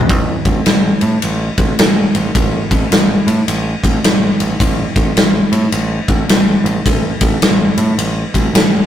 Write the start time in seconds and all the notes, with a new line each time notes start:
0.09 A1, kick, ride
0.45 A1, kick, ride
0.66 A1, snare, ride
1.01 A2, ride
1.22 A1, ride
1.58 A1, kick, ride
1.79 A1, snare, ride
2.15 A1, ride
2.35 A1, kick, ride
2.71 A1, kick, ride
2.92 A1, snare, ride
3.27 A2, ride
3.48 A1, ride
3.83 A1, kick, ride
4.04 A1, snare, ride
4.40 A1, ride
4.60 A1, kick, ride
4.96 A1, kick, ride
5.16 A1, snare, ride
5.52 A2, ride
5.72 A1, ride
6.08 A1, kick, ride
6.29 A1, snare, ride
6.64 A1, ride
6.86 A1, kick, ride
7.21 A1, kick, ride
7.42 A1, snare, ride
7.77 A2, ride
7.97 A1, ride
8.34 A1, kick, ride
8.54 A1, snare, ride